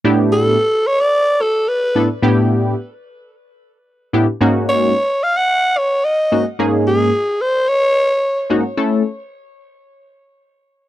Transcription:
0.04 A2 B3 D4 E4 G4
0.32 A4
0.87 C#5
1.01 D5
1.41 A4
1.68 B4
1.95 A2 B3 D4 E4 A4
2.22 A2 B3 D4 E4 G4
4.13 A2 B3 D4 E4 G4
4.41 G#2 A#3 C#4 D#4 F#4
4.69 C#5
5.23 F5
5.37 F#5
5.78 C#5
6.05 D#5
6.32 G#2 A#3 C#4 D#4 F#4
6.59 G#2 A#3 C#4 D#4 G#4
6.87 G#4
7.41 C5
7.69 C#5
8.50 G#2 A#3 C#4 D#4 F#4
8.77 A3 C#4 E4 A4

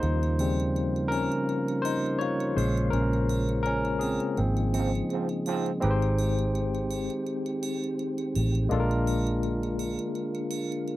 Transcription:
Already playing: A#3 D#4 C5
0.02 D#2 C#3 G3 F4, muted triangle
0.23 muted triangle
0.39 C#3 F3 G3 C4, triangle
0.60 muted triangle
0.76 muted triangle
0.96 muted triangle
1.08 C#4 A#4, triangle
1.32 muted triangle
1.49 muted triangle
1.68 muted triangle
1.82 D#4 C5, triangle
2.06 muted triangle
2.19 F4 C#5, muted triangle
2.40 muted triangle
2.56 A#1 C#3 G#3 A#3 F4 C5, triangle
2.78 muted triangle
2.91 A#1 C#4 A#4, muted triangle
3.13 muted triangle
3.29 triangle
3.49 muted triangle
3.63 C#4 A#4, muted triangle
3.85 muted triangle
3.99 C4 G#4, triangle
4.20 muted triangle
4.37 G#1 F3 A#3 C4 D#4, muted triangle
4.57 muted triangle
4.74 G#2 F3 C4, triangle
4.95 muted triangle
5.10 G#2 F3 C4, muted triangle
5.29 muted triangle
5.46 G#2 F3 C4, triangle
5.66 muted triangle
5.80 G#1 D#3 G#3 C4 D#4 G4 B4, muted triangle
5.91 C5
6.02 muted triangle
6.19 triangle
6.39 muted triangle
6.55 muted triangle
6.75 muted triangle
6.91 triangle
7.10 muted triangle
7.27 muted triangle
7.46 muted triangle
7.63 triangle
7.84 muted triangle
7.99 muted triangle
8.18 muted triangle
8.35 A1, triangle
8.55 muted triangle
8.69 A#1 D3 G#3 A#3 D4 F4, muted triangle
8.73 A4
8.80 A#4
8.91 muted triangle
9.07 triangle
9.27 muted triangle
9.43 muted triangle
9.63 muted triangle
9.79 triangle
9.99 muted triangle
10.15 muted triangle
10.35 muted triangle
10.51 triangle
10.72 muted triangle
10.88 muted triangle

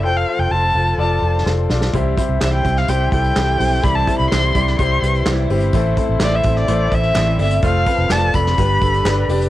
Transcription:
Already playing: C4
0.03 F1 F3 F4 A4 C5 G5
0.17 F5
0.28 F4 A4 C5
0.39 F1 G5
0.51 F1 F4 A4 C5 A5
0.75 F1 F4 A4 C5
0.98 F1 F4 A4 D5 A5
1.22 F1 F4 A4 C5
1.46 F1 F4 A4 C5, snare
1.70 B1 F4 A4 D5, snare
1.81 snare
1.93 C2 C3 E3 G3 C4 E4 G4 C5, kick, closed hi-hat
2.16 G3 C4 E4 G4 C5, kick, closed hi-hat
2.29 C2
2.40 C2 C3 E3 G3 C4 E4 G4 C5 E5, snare, clap, closed hi-hat
2.54 G5
2.63 C2 G3 C4 E4 G4 C5, kick, closed hi-hat
2.77 F5, snare
2.88 C2 G3 C4 E4 G4 C5 G5, closed hi-hat
3.12 C2 E4 G4 A4 G5, kick, closed hi-hat
3.24 closed hi-hat
3.35 C2 C3 E3 G3 C4 E4 G4 A4 C5, snare, clap, closed hi-hat
3.59 B1 G3 C4 E4 G4 C5, open hi-hat
3.83 C2 C3 E3 G3 C4 E4 G4 C5 D5 B5, kick, closed hi-hat
3.95 A5
4.07 G3 C4 E4 G4 C5, kick, closed hi-hat
4.18 C2 B5
4.30 C2 C3 E3 G3 C4 E4 G4 C5 C6, snare, clap, closed hi-hat
4.53 C2 G3 C4 E4 G4 C5 D5, kick, closed hi-hat
4.67 snare
4.78 C2 G3 C4 E4 G4 C5 C6, kick, closed hi-hat
5.02 C2 E4 G4 B4, closed hi-hat
5.15 closed hi-hat
5.25 C2 C3 E3 G3 C4 E4 G4 C5, snare, clap, closed hi-hat
5.50 G1 G3 C4 E4 G4 C5, open hi-hat
5.60 closed hi-hat
5.73 A1 A2 E3 A3 C4 E4 A4 C5, kick, closed hi-hat
5.97 A3 C4 E4 A4 C5, kick, closed hi-hat
6.09 A1
6.20 A1 A2 E3 A3 C4 E4 A4 C5 D5, snare, clap, closed hi-hat
6.35 E5
6.43 A1 A3 C4 E4 A4 C5, kick, closed hi-hat
6.56 D5, snare
6.68 A1 A3 C4 E4 A4 C5, closed hi-hat
6.91 A1 E4 A4 C5 E5, kick, closed hi-hat
7.03 closed hi-hat
7.15 A1 A2 E3 A3 C4 E4 A4 C5 D5, snare, clap, closed hi-hat
7.39 G1 A3 C4 E4 A4 C5 D5 E5, open hi-hat
7.51 closed hi-hat
7.62 F1 F3 A3 C4 F4 A4 C5 F5, kick, closed hi-hat
7.86 C4 F4 A4 B4 C5, kick, closed hi-hat
7.98 F1
8.09 F1 F3 A3 C4 F4 A4 C5 D5 A5, snare, clap, closed hi-hat
8.34 F1 C4 F4 A4 C5 D5 B5, kick, closed hi-hat
8.46 snare
8.56 G1 G2 G3 D4 G4 B4, kick, closed hi-hat
8.82 G1 D4 G4 A4, kick, closed hi-hat
8.94 closed hi-hat
9.05 G1 G3 D4 G4 B4, snare, clap, closed hi-hat
9.28 F1 D4 G4 B4 D5, open hi-hat
9.42 closed hi-hat

